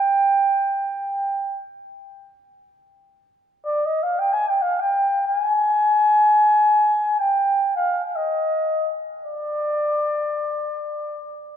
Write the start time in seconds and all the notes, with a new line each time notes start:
Already playing: G5
3.65 D5
3.86 D#5
4.03 F5
4.19 G5
4.33 G#5
4.48 G5
4.62 F5
4.80 G5
5.27 G5
5.40 G#5
7.19 G5
7.76 F5
8.05 F5
8.16 D#5
9.24 D5